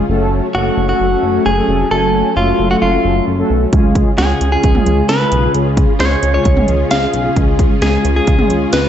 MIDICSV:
0, 0, Header, 1, 6, 480
1, 0, Start_track
1, 0, Key_signature, 3, "minor"
1, 0, Tempo, 454545
1, 97, Time_signature, 4, 2, 24, 8
1, 9387, End_track
2, 0, Start_track
2, 0, Title_t, "Clean electric guitar"
2, 0, Program_c, 0, 27
2, 578, Note_on_c, 0, 66, 91
2, 927, Note_off_c, 0, 66, 0
2, 940, Note_on_c, 0, 66, 83
2, 1536, Note_off_c, 0, 66, 0
2, 1540, Note_on_c, 0, 68, 99
2, 1985, Note_off_c, 0, 68, 0
2, 2020, Note_on_c, 0, 69, 111
2, 2495, Note_off_c, 0, 69, 0
2, 2500, Note_on_c, 0, 65, 91
2, 2833, Note_off_c, 0, 65, 0
2, 2859, Note_on_c, 0, 66, 80
2, 2912, Note_off_c, 0, 66, 0
2, 2977, Note_on_c, 0, 65, 76
2, 3423, Note_off_c, 0, 65, 0
2, 4417, Note_on_c, 0, 68, 84
2, 4763, Note_off_c, 0, 68, 0
2, 4776, Note_on_c, 0, 68, 86
2, 5334, Note_off_c, 0, 68, 0
2, 5375, Note_on_c, 0, 71, 96
2, 5822, Note_off_c, 0, 71, 0
2, 6340, Note_on_c, 0, 73, 84
2, 6674, Note_off_c, 0, 73, 0
2, 6698, Note_on_c, 0, 73, 84
2, 7256, Note_off_c, 0, 73, 0
2, 7297, Note_on_c, 0, 77, 97
2, 7744, Note_off_c, 0, 77, 0
2, 8261, Note_on_c, 0, 68, 90
2, 8608, Note_off_c, 0, 68, 0
2, 8621, Note_on_c, 0, 68, 89
2, 9213, Note_off_c, 0, 68, 0
2, 9217, Note_on_c, 0, 71, 102
2, 9387, Note_off_c, 0, 71, 0
2, 9387, End_track
3, 0, Start_track
3, 0, Title_t, "Analog polysynth"
3, 0, Program_c, 1, 90
3, 96, Note_on_c, 1, 66, 81
3, 97, Note_on_c, 1, 57, 91
3, 97, Note_on_c, 1, 69, 101
3, 98, Note_on_c, 1, 61, 82
3, 498, Note_off_c, 1, 57, 0
3, 498, Note_off_c, 1, 66, 0
3, 498, Note_off_c, 1, 69, 0
3, 499, Note_off_c, 1, 61, 0
3, 578, Note_on_c, 1, 57, 82
3, 578, Note_on_c, 1, 61, 72
3, 578, Note_on_c, 1, 66, 73
3, 578, Note_on_c, 1, 69, 87
3, 878, Note_off_c, 1, 61, 0
3, 878, Note_off_c, 1, 69, 0
3, 879, Note_off_c, 1, 57, 0
3, 879, Note_off_c, 1, 66, 0
3, 938, Note_on_c, 1, 61, 68
3, 938, Note_on_c, 1, 69, 82
3, 939, Note_on_c, 1, 57, 75
3, 939, Note_on_c, 1, 66, 69
3, 1138, Note_off_c, 1, 61, 0
3, 1138, Note_off_c, 1, 66, 0
3, 1138, Note_off_c, 1, 69, 0
3, 1139, Note_off_c, 1, 57, 0
3, 1178, Note_on_c, 1, 57, 79
3, 1178, Note_on_c, 1, 69, 85
3, 1179, Note_on_c, 1, 61, 74
3, 1179, Note_on_c, 1, 66, 72
3, 1579, Note_off_c, 1, 57, 0
3, 1579, Note_off_c, 1, 61, 0
3, 1579, Note_off_c, 1, 66, 0
3, 1579, Note_off_c, 1, 69, 0
3, 1657, Note_on_c, 1, 57, 73
3, 1657, Note_on_c, 1, 61, 70
3, 1657, Note_on_c, 1, 69, 84
3, 1658, Note_on_c, 1, 66, 69
3, 1958, Note_off_c, 1, 57, 0
3, 1958, Note_off_c, 1, 61, 0
3, 1958, Note_off_c, 1, 66, 0
3, 1958, Note_off_c, 1, 69, 0
3, 2018, Note_on_c, 1, 66, 70
3, 2018, Note_on_c, 1, 80, 85
3, 2019, Note_on_c, 1, 57, 77
3, 2019, Note_on_c, 1, 61, 69
3, 2419, Note_off_c, 1, 57, 0
3, 2419, Note_off_c, 1, 61, 0
3, 2419, Note_off_c, 1, 66, 0
3, 2419, Note_off_c, 1, 80, 0
3, 2498, Note_on_c, 1, 57, 80
3, 2498, Note_on_c, 1, 61, 70
3, 2498, Note_on_c, 1, 66, 70
3, 2498, Note_on_c, 1, 69, 88
3, 2798, Note_off_c, 1, 57, 0
3, 2798, Note_off_c, 1, 61, 0
3, 2798, Note_off_c, 1, 66, 0
3, 2798, Note_off_c, 1, 69, 0
3, 2858, Note_on_c, 1, 57, 76
3, 2859, Note_on_c, 1, 61, 66
3, 2859, Note_on_c, 1, 66, 69
3, 2859, Note_on_c, 1, 69, 82
3, 3058, Note_off_c, 1, 57, 0
3, 3059, Note_off_c, 1, 61, 0
3, 3059, Note_off_c, 1, 66, 0
3, 3059, Note_off_c, 1, 69, 0
3, 3099, Note_on_c, 1, 54, 73
3, 3099, Note_on_c, 1, 57, 79
3, 3099, Note_on_c, 1, 61, 71
3, 3099, Note_on_c, 1, 69, 86
3, 3499, Note_off_c, 1, 54, 0
3, 3499, Note_off_c, 1, 57, 0
3, 3499, Note_off_c, 1, 61, 0
3, 3499, Note_off_c, 1, 69, 0
3, 3578, Note_on_c, 1, 57, 89
3, 3578, Note_on_c, 1, 61, 81
3, 3578, Note_on_c, 1, 66, 82
3, 3579, Note_on_c, 1, 69, 97
3, 3878, Note_off_c, 1, 61, 0
3, 3879, Note_off_c, 1, 57, 0
3, 3879, Note_off_c, 1, 66, 0
3, 3879, Note_off_c, 1, 69, 0
3, 3939, Note_on_c, 1, 56, 93
3, 3939, Note_on_c, 1, 61, 82
3, 3939, Note_on_c, 1, 68, 98
3, 3940, Note_on_c, 1, 65, 82
3, 4339, Note_off_c, 1, 56, 0
3, 4339, Note_off_c, 1, 61, 0
3, 4339, Note_off_c, 1, 68, 0
3, 4340, Note_off_c, 1, 65, 0
3, 4419, Note_on_c, 1, 56, 78
3, 4419, Note_on_c, 1, 61, 74
3, 4419, Note_on_c, 1, 65, 71
3, 4419, Note_on_c, 1, 68, 88
3, 4719, Note_off_c, 1, 56, 0
3, 4719, Note_off_c, 1, 61, 0
3, 4719, Note_off_c, 1, 65, 0
3, 4719, Note_off_c, 1, 68, 0
3, 4778, Note_on_c, 1, 56, 72
3, 4778, Note_on_c, 1, 65, 67
3, 4778, Note_on_c, 1, 68, 82
3, 4779, Note_on_c, 1, 61, 66
3, 4978, Note_off_c, 1, 56, 0
3, 4978, Note_off_c, 1, 65, 0
3, 4978, Note_off_c, 1, 68, 0
3, 4979, Note_off_c, 1, 61, 0
3, 5018, Note_on_c, 1, 56, 80
3, 5018, Note_on_c, 1, 61, 73
3, 5018, Note_on_c, 1, 68, 89
3, 5019, Note_on_c, 1, 65, 73
3, 5419, Note_off_c, 1, 56, 0
3, 5419, Note_off_c, 1, 61, 0
3, 5419, Note_off_c, 1, 65, 0
3, 5419, Note_off_c, 1, 68, 0
3, 5498, Note_on_c, 1, 68, 83
3, 5499, Note_on_c, 1, 56, 76
3, 5499, Note_on_c, 1, 61, 69
3, 5499, Note_on_c, 1, 65, 71
3, 5799, Note_off_c, 1, 56, 0
3, 5799, Note_off_c, 1, 61, 0
3, 5799, Note_off_c, 1, 65, 0
3, 5799, Note_off_c, 1, 68, 0
3, 5858, Note_on_c, 1, 61, 71
3, 5858, Note_on_c, 1, 68, 85
3, 5859, Note_on_c, 1, 56, 74
3, 5859, Note_on_c, 1, 65, 70
3, 6259, Note_off_c, 1, 56, 0
3, 6259, Note_off_c, 1, 61, 0
3, 6259, Note_off_c, 1, 65, 0
3, 6259, Note_off_c, 1, 68, 0
3, 6336, Note_on_c, 1, 68, 90
3, 6337, Note_on_c, 1, 56, 78
3, 6337, Note_on_c, 1, 61, 75
3, 6337, Note_on_c, 1, 65, 73
3, 6638, Note_off_c, 1, 56, 0
3, 6638, Note_off_c, 1, 61, 0
3, 6638, Note_off_c, 1, 65, 0
3, 6638, Note_off_c, 1, 68, 0
3, 6698, Note_on_c, 1, 56, 74
3, 6698, Note_on_c, 1, 65, 67
3, 6698, Note_on_c, 1, 68, 79
3, 6699, Note_on_c, 1, 61, 68
3, 6898, Note_off_c, 1, 56, 0
3, 6898, Note_off_c, 1, 61, 0
3, 6898, Note_off_c, 1, 65, 0
3, 6898, Note_off_c, 1, 68, 0
3, 6938, Note_on_c, 1, 61, 73
3, 6938, Note_on_c, 1, 65, 71
3, 6938, Note_on_c, 1, 68, 88
3, 6939, Note_on_c, 1, 56, 81
3, 7339, Note_off_c, 1, 56, 0
3, 7339, Note_off_c, 1, 61, 0
3, 7339, Note_off_c, 1, 65, 0
3, 7339, Note_off_c, 1, 68, 0
3, 7417, Note_on_c, 1, 61, 71
3, 7417, Note_on_c, 1, 65, 71
3, 7417, Note_on_c, 1, 68, 87
3, 7418, Note_on_c, 1, 56, 75
3, 7718, Note_off_c, 1, 56, 0
3, 7718, Note_off_c, 1, 61, 0
3, 7718, Note_off_c, 1, 65, 0
3, 7718, Note_off_c, 1, 68, 0
3, 7776, Note_on_c, 1, 61, 71
3, 7776, Note_on_c, 1, 68, 86
3, 7777, Note_on_c, 1, 56, 76
3, 7777, Note_on_c, 1, 65, 70
3, 8178, Note_off_c, 1, 56, 0
3, 8178, Note_off_c, 1, 61, 0
3, 8178, Note_off_c, 1, 65, 0
3, 8178, Note_off_c, 1, 68, 0
3, 8254, Note_on_c, 1, 56, 80
3, 8254, Note_on_c, 1, 61, 74
3, 8254, Note_on_c, 1, 65, 74
3, 8255, Note_on_c, 1, 68, 86
3, 8556, Note_off_c, 1, 56, 0
3, 8556, Note_off_c, 1, 61, 0
3, 8557, Note_off_c, 1, 65, 0
3, 8557, Note_off_c, 1, 68, 0
3, 8617, Note_on_c, 1, 56, 77
3, 8617, Note_on_c, 1, 61, 68
3, 8617, Note_on_c, 1, 65, 69
3, 8617, Note_on_c, 1, 68, 83
3, 8818, Note_off_c, 1, 56, 0
3, 8818, Note_off_c, 1, 61, 0
3, 8818, Note_off_c, 1, 65, 0
3, 8818, Note_off_c, 1, 68, 0
3, 8856, Note_on_c, 1, 56, 78
3, 8856, Note_on_c, 1, 61, 75
3, 8856, Note_on_c, 1, 65, 75
3, 8856, Note_on_c, 1, 68, 85
3, 9258, Note_off_c, 1, 56, 0
3, 9258, Note_off_c, 1, 61, 0
3, 9258, Note_off_c, 1, 65, 0
3, 9258, Note_off_c, 1, 68, 0
3, 9337, Note_on_c, 1, 56, 79
3, 9337, Note_on_c, 1, 61, 69
3, 9337, Note_on_c, 1, 65, 73
3, 9337, Note_on_c, 1, 71, 83
3, 9387, Note_off_c, 1, 56, 0
3, 9387, Note_off_c, 1, 61, 0
3, 9387, Note_off_c, 1, 65, 0
3, 9387, Note_off_c, 1, 71, 0
3, 9387, End_track
4, 0, Start_track
4, 0, Title_t, "String machine"
4, 0, Program_c, 2, 50
4, 96, Note_on_c, 2, 57, 77
4, 97, Note_on_c, 2, 54, 81
4, 97, Note_on_c, 2, 61, 67
4, 3898, Note_off_c, 2, 57, 0
4, 3899, Note_off_c, 2, 54, 0
4, 3936, Note_on_c, 2, 49, 78
4, 3936, Note_on_c, 2, 65, 68
4, 3936, Note_on_c, 2, 68, 84
4, 9387, Note_off_c, 2, 49, 0
4, 9387, Note_off_c, 2, 61, 0
4, 9387, Note_off_c, 2, 65, 0
4, 9387, Note_off_c, 2, 68, 0
4, 9387, End_track
5, 0, Start_track
5, 0, Title_t, "Analog synth bass"
5, 0, Program_c, 3, 38
5, 96, Note_on_c, 3, 30, 102
5, 433, Note_off_c, 3, 30, 0
5, 576, Note_on_c, 3, 30, 102
5, 745, Note_off_c, 3, 30, 0
5, 817, Note_on_c, 3, 30, 99
5, 985, Note_off_c, 3, 30, 0
5, 1056, Note_on_c, 3, 30, 102
5, 1225, Note_off_c, 3, 30, 0
5, 1297, Note_on_c, 3, 30, 98
5, 1465, Note_off_c, 3, 30, 0
5, 1537, Note_on_c, 3, 30, 102
5, 1705, Note_off_c, 3, 30, 0
5, 1777, Note_on_c, 3, 29, 96
5, 1945, Note_off_c, 3, 29, 0
5, 2016, Note_on_c, 3, 30, 105
5, 2353, Note_off_c, 3, 30, 0
5, 2496, Note_on_c, 3, 30, 107
5, 2665, Note_off_c, 3, 30, 0
5, 2735, Note_on_c, 3, 30, 93
5, 2904, Note_off_c, 3, 30, 0
5, 2977, Note_on_c, 3, 30, 99
5, 3145, Note_off_c, 3, 30, 0
5, 3217, Note_on_c, 3, 30, 97
5, 3385, Note_off_c, 3, 30, 0
5, 3456, Note_on_c, 3, 30, 96
5, 3625, Note_off_c, 3, 30, 0
5, 3696, Note_on_c, 3, 35, 97
5, 3865, Note_off_c, 3, 35, 0
5, 3936, Note_on_c, 3, 37, 101
5, 4273, Note_off_c, 3, 37, 0
5, 4416, Note_on_c, 3, 37, 108
5, 4584, Note_off_c, 3, 37, 0
5, 4655, Note_on_c, 3, 37, 106
5, 4824, Note_off_c, 3, 37, 0
5, 4896, Note_on_c, 3, 37, 98
5, 5065, Note_off_c, 3, 37, 0
5, 5137, Note_on_c, 3, 37, 92
5, 5305, Note_off_c, 3, 37, 0
5, 5375, Note_on_c, 3, 37, 96
5, 5544, Note_off_c, 3, 37, 0
5, 5615, Note_on_c, 3, 35, 97
5, 5784, Note_off_c, 3, 35, 0
5, 5855, Note_on_c, 3, 37, 103
5, 6192, Note_off_c, 3, 37, 0
5, 6337, Note_on_c, 3, 37, 108
5, 6505, Note_off_c, 3, 37, 0
5, 6576, Note_on_c, 3, 37, 101
5, 6744, Note_off_c, 3, 37, 0
5, 6817, Note_on_c, 3, 37, 95
5, 6985, Note_off_c, 3, 37, 0
5, 7058, Note_on_c, 3, 37, 93
5, 7226, Note_off_c, 3, 37, 0
5, 7296, Note_on_c, 3, 37, 97
5, 7465, Note_off_c, 3, 37, 0
5, 7537, Note_on_c, 3, 35, 95
5, 7705, Note_off_c, 3, 35, 0
5, 7777, Note_on_c, 3, 37, 103
5, 8113, Note_off_c, 3, 37, 0
5, 8257, Note_on_c, 3, 37, 109
5, 8425, Note_off_c, 3, 37, 0
5, 8498, Note_on_c, 3, 37, 104
5, 8666, Note_off_c, 3, 37, 0
5, 8738, Note_on_c, 3, 37, 95
5, 8906, Note_off_c, 3, 37, 0
5, 8978, Note_on_c, 3, 37, 94
5, 9146, Note_off_c, 3, 37, 0
5, 9217, Note_on_c, 3, 37, 97
5, 9385, Note_off_c, 3, 37, 0
5, 9387, End_track
6, 0, Start_track
6, 0, Title_t, "Drums"
6, 3936, Note_on_c, 9, 42, 66
6, 3937, Note_on_c, 9, 36, 102
6, 4042, Note_off_c, 9, 36, 0
6, 4042, Note_off_c, 9, 42, 0
6, 4175, Note_on_c, 9, 36, 97
6, 4176, Note_on_c, 9, 42, 79
6, 4281, Note_off_c, 9, 36, 0
6, 4281, Note_off_c, 9, 42, 0
6, 4416, Note_on_c, 9, 42, 65
6, 4419, Note_on_c, 9, 38, 117
6, 4522, Note_off_c, 9, 42, 0
6, 4524, Note_off_c, 9, 38, 0
6, 4657, Note_on_c, 9, 42, 80
6, 4763, Note_off_c, 9, 42, 0
6, 4894, Note_on_c, 9, 42, 68
6, 4897, Note_on_c, 9, 36, 90
6, 4999, Note_off_c, 9, 42, 0
6, 5002, Note_off_c, 9, 36, 0
6, 5016, Note_on_c, 9, 45, 98
6, 5121, Note_off_c, 9, 45, 0
6, 5136, Note_on_c, 9, 42, 78
6, 5242, Note_off_c, 9, 42, 0
6, 5374, Note_on_c, 9, 42, 76
6, 5377, Note_on_c, 9, 38, 109
6, 5480, Note_off_c, 9, 42, 0
6, 5482, Note_off_c, 9, 38, 0
6, 5615, Note_on_c, 9, 42, 67
6, 5720, Note_off_c, 9, 42, 0
6, 5856, Note_on_c, 9, 42, 64
6, 5961, Note_off_c, 9, 42, 0
6, 6095, Note_on_c, 9, 36, 98
6, 6096, Note_on_c, 9, 42, 80
6, 6200, Note_off_c, 9, 36, 0
6, 6201, Note_off_c, 9, 42, 0
6, 6335, Note_on_c, 9, 42, 67
6, 6337, Note_on_c, 9, 38, 122
6, 6440, Note_off_c, 9, 42, 0
6, 6443, Note_off_c, 9, 38, 0
6, 6577, Note_on_c, 9, 42, 83
6, 6682, Note_off_c, 9, 42, 0
6, 6814, Note_on_c, 9, 42, 69
6, 6817, Note_on_c, 9, 36, 88
6, 6919, Note_off_c, 9, 42, 0
6, 6922, Note_off_c, 9, 36, 0
6, 6936, Note_on_c, 9, 45, 98
6, 7041, Note_off_c, 9, 45, 0
6, 7055, Note_on_c, 9, 42, 79
6, 7160, Note_off_c, 9, 42, 0
6, 7295, Note_on_c, 9, 42, 80
6, 7298, Note_on_c, 9, 38, 116
6, 7401, Note_off_c, 9, 42, 0
6, 7403, Note_off_c, 9, 38, 0
6, 7535, Note_on_c, 9, 42, 67
6, 7641, Note_off_c, 9, 42, 0
6, 7777, Note_on_c, 9, 36, 104
6, 7777, Note_on_c, 9, 42, 66
6, 7882, Note_off_c, 9, 42, 0
6, 7883, Note_off_c, 9, 36, 0
6, 8016, Note_on_c, 9, 36, 95
6, 8017, Note_on_c, 9, 42, 79
6, 8121, Note_off_c, 9, 36, 0
6, 8123, Note_off_c, 9, 42, 0
6, 8256, Note_on_c, 9, 42, 64
6, 8259, Note_on_c, 9, 38, 123
6, 8362, Note_off_c, 9, 42, 0
6, 8364, Note_off_c, 9, 38, 0
6, 8498, Note_on_c, 9, 42, 84
6, 8604, Note_off_c, 9, 42, 0
6, 8736, Note_on_c, 9, 42, 68
6, 8738, Note_on_c, 9, 36, 90
6, 8841, Note_off_c, 9, 42, 0
6, 8843, Note_off_c, 9, 36, 0
6, 8857, Note_on_c, 9, 45, 96
6, 8962, Note_off_c, 9, 45, 0
6, 8977, Note_on_c, 9, 42, 77
6, 9082, Note_off_c, 9, 42, 0
6, 9215, Note_on_c, 9, 42, 80
6, 9218, Note_on_c, 9, 38, 109
6, 9321, Note_off_c, 9, 42, 0
6, 9324, Note_off_c, 9, 38, 0
6, 9387, End_track
0, 0, End_of_file